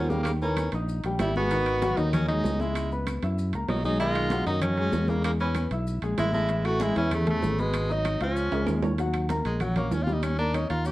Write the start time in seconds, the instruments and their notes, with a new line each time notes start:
Already playing: fingered electric bass D#2, tenor saxophone C#4
0.08 baritone saxophone C#3, grand piano G3 G4 G5, tenor saxophone A#3, high conga, maracas
0.23 baritone saxophone C#3, tenor saxophone A#3, high conga, high timbale, claves, maracas
0.41 baritone saxophone E3, grand piano A#3 A#4 A#5, tenor saxophone C#4, high conga, maracas
0.56 high conga, high timbale, low timbale, claves, maracas
0.72 fingered electric bass A#1, grand piano D#4 D#5 D#6, high conga, high timbale, maracas
0.88 high conga, maracas
1.03 fingered electric bass A#1, grand piano G3 G4 G5, high conga, high timbale, maracas
1.19 fingered electric bass G#1, baritone saxophone G3, tenor saxophone E4, high conga, high timbale, low timbale, claves, maracas
1.35 grand piano G#3 G#4 G#5, baritone saxophone B3, tenor saxophone F#4, high conga, maracas
1.50 grand piano D#3 D#4 D#5, high conga, high timbale, maracas
1.66 high conga, high timbale, claves, maracas
1.82 grand piano F#3 F#4 F#5, high conga, high timbale, low timbale, maracas
1.97 fingered electric bass D#2, grand piano D#3 D#4 D#5, baritone saxophone F#3, tenor saxophone D#4, high conga, high timbale, maracas
2.13 baritone saxophone F#3, tenor saxophone C#4, high conga, low conga, high timbale, claves, maracas
2.28 baritone saxophone F#3, grand piano G#3 G#4 G#5, tenor saxophone D#4, high conga, high timbale, maracas
2.44 fingered electric bass C#2, high conga, low timbale, maracas
2.60 baritone saxophone G#3, grand piano G#3 G#4 G#5, tenor saxophone E4, high conga, maracas
2.76 high conga, high timbale, claves, maracas
2.92 grand piano B3 B4 B5, high conga, maracas
3.07 high conga, high timbale, low timbale, claves, maracas
3.23 fingered electric bass F#2, grand piano E4 E5 E6, high conga, high timbale, maracas
3.38 high conga, maracas
3.53 fingered electric bass C#2, grand piano A#3 A#4 A#5, high conga, high timbale, maracas
3.69 fingered electric bass B1, baritone saxophone F#3, tenor saxophone D#4, high conga, high timbale, low timbale, claves, maracas
3.84 baritone saxophone F#3, grand piano G#3 G#4 G#5, tenor saxophone D#4, high conga, maracas
3.99 grand piano D#3 D#4 D#5, baritone saxophone G#3, tenor saxophone F4, high conga, high timbale, maracas
4.15 high conga, high timbale, claves, maracas
4.30 grand piano F#3 F#4 F#5, high conga, high timbale, low timbale, maracas
4.46 fingered electric bass F#2, grand piano D#3 D#4 D#5, baritone saxophone F#3, tenor saxophone D#4, high timbale, maracas
4.61 baritone saxophone F#3, tenor saxophone C#4, high conga, low conga, high timbale, claves, maracas
4.77 grand piano G#3 G#4 G#5, high conga, high timbale, maracas
4.92 fingered electric bass E2, high conga, low timbale, maracas
5.08 baritone saxophone C#3, grand piano G#3 G#4 G#5, tenor saxophone A#3, high conga, maracas
5.24 baritone saxophone C#3, tenor saxophone A#3, high conga, high timbale, claves, maracas
5.40 baritone saxophone E3, grand piano B3 B4 B5, tenor saxophone C#4, high conga, maracas
5.55 high conga, high timbale, low timbale, claves, maracas
5.71 fingered electric bass B1, grand piano E4 E5 E6, high conga, high timbale, maracas
5.87 high conga, maracas
6.02 fingered electric bass A#1, grand piano G#3 G#4 G#5, high conga, high timbale, maracas
6.18 fingered electric bass A1, baritone saxophone G#3, tenor saxophone E4, high conga, high timbale, low timbale, claves, maracas
6.33 baritone saxophone G#3, grand piano A3 A4 A5, tenor saxophone E4, high conga, maracas
6.49 grand piano E3 E4 E5, high conga, high timbale, maracas
6.65 baritone saxophone A3, tenor saxophone F#4, high conga, high timbale, claves, maracas
6.80 grand piano G#3 G#4 G#5, baritone saxophone G#3, tenor saxophone E4, high conga, high timbale, low timbale, maracas
6.96 fingered electric bass E2, grand piano E3 E4 E5, baritone saxophone E3, tenor saxophone C#4, high conga, high timbale, maracas
7.11 baritone saxophone C#3, tenor saxophone A3, high conga, low conga, high timbale, claves, maracas
7.26 baritone saxophone C#3, grand piano A3 A4 A5, tenor saxophone A3, high conga, low conga, high timbale, maracas
7.42 fingered electric bass G#1, high conga, low timbale, maracas
7.58 baritone saxophone B2, tenor saxophone G#3, grand piano B3 B4 B5, high conga, maracas
7.73 high conga, high timbale, claves, maracas
7.89 baritone saxophone F#3, grand piano D#4 D#5 D#6, tenor saxophone D#4, high conga, maracas
8.05 high conga, high timbale, low timbale, claves, maracas
8.20 fingered electric bass C#2, baritone saxophone F3, tenor saxophone C#4, grand piano F4 F5 F6, high conga, high timbale, maracas
8.36 high conga, maracas
8.52 fingered electric bass C#2, grand piano G#3 G#4 G#5, high conga, high timbale, maracas
8.67 fingered electric bass D#2, high conga, high timbale, claves, maracas
8.83 grand piano C#4 C#5 C#6, high conga, low timbale, maracas
8.99 grand piano F#3 F#4 F#5, high conga, high timbale, maracas
9.14 high conga, high timbale, claves, maracas
9.29 grand piano A#3 A#4 A#5, high conga, high timbale, low timbale, maracas
9.45 fingered electric bass A#1, tenor saxophone G#3, high conga, high timbale, maracas
9.60 tenor saxophone F#3, grand piano F#4 F#5 F#6, high conga, low conga, high timbale, claves, maracas
9.76 tenor saxophone A#3, grand piano C#4 C#5 C#6, high conga, low conga, high timbale, maracas
9.91 fingered electric bass D#2, tenor saxophone C#4, high conga, low timbale, maracas
10.03 grand piano G3 G4, tenor saxophone F4, high conga
10.07 grand piano G5, maracas
10.13 tenor saxophone D#4
10.23 tenor saxophone C#4, high conga, high timbale, claves, maracas
10.38 grand piano A#3 A#4 A#5, tenor saxophone D4, high conga, maracas
10.54 grand piano C#4 C#5 C#6, tenor saxophone D#4, high conga, high timbale, low timbale, claves, maracas
10.70 fingered electric bass D#2, grand piano A#3 A#4 A#5, tenor saxophone F4, high conga, high timbale, maracas
10.85 grand piano C#4 C#5 C#6, tenor saxophone G4, high conga, maracas